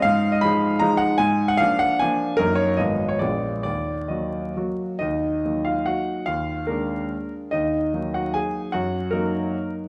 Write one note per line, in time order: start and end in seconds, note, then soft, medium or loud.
0.02 0.41 G#2 medium
0.02 0.31 F5 loud
0.32 0.42 D#5 loud
0.41 0.78 F3 medium
0.41 0.78 G#3 medium
0.41 0.78 D#4 medium
0.41 0.80 B5 loud
0.79 1.16 F3 medium
0.79 1.16 G#3 medium
0.79 1.16 D#4 medium
0.79 0.99 A#5 loud
0.97 1.18 F#5 loud
1.18 1.59 G#2 medium
1.18 1.48 G#5 loud
1.48 1.59 F#5 loud
1.57 1.97 F3 medium
1.57 1.97 A#3 medium
1.57 1.97 D4 medium
1.57 1.80 F5 loud
1.79 2.00 F#5 loud
1.99 2.35 F3 medium
1.99 2.35 A#3 medium
1.99 2.35 D4 medium
1.99 2.38 G#5 loud
2.37 2.78 F#2 medium
2.37 2.75 F#3 medium
2.37 2.75 A#3 medium
2.37 2.75 D#4 medium
2.37 2.57 A#4 loud
2.55 2.77 C#5 loud
2.77 3.20 G#1 medium
2.77 3.17 F3 medium
2.77 3.18 B3 medium
2.77 3.18 F4 medium
2.77 3.10 D#5 loud
3.09 3.20 C#5 loud
3.19 3.64 A#1 medium
3.19 3.61 G#3 medium
3.19 3.61 B3 medium
3.19 3.61 F4 medium
3.19 3.62 D5 medium
3.63 4.09 D#2 medium
3.63 4.10 D5 loud
4.08 4.53 F#3 soft
4.08 4.53 A#3 soft
4.08 4.53 F#4 soft
4.08 4.56 D#5 medium
4.56 4.97 F#3 medium
4.56 4.97 A#3 soft
4.56 4.97 F#4 medium
4.99 5.43 D#2 medium
4.99 5.44 D#4 medium
4.99 5.65 D#5 medium
5.45 6.24 F#3 soft
5.45 6.24 A#3 soft
5.45 6.24 D#4 medium
5.65 5.86 F4 medium
5.65 5.87 F5 medium
5.86 6.25 F#4 medium
5.86 6.27 F#5 medium
6.26 6.68 D#2 medium
6.26 6.66 F4 medium
6.26 6.68 F5 loud
6.67 7.48 G#3 soft
6.67 7.28 A#3 medium
6.67 7.49 D4 medium
6.67 7.31 A#4 medium
7.51 7.93 D#2 medium
7.51 7.93 D#4 medium
7.51 8.14 D#5 loud
7.93 8.69 F#3 medium
7.93 8.69 A#3 medium
7.93 8.70 D#4 medium
8.14 8.34 F#4 medium
8.14 8.35 F#5 medium
8.34 8.71 G#4 medium
8.34 8.73 G#5 medium
8.72 9.12 F#2 medium
8.72 9.10 F#4 medium
8.72 9.12 F#5 medium
9.11 9.88 F#3 medium
9.11 9.69 A#3 medium
9.11 9.88 D#4 medium
9.11 9.72 A#4 medium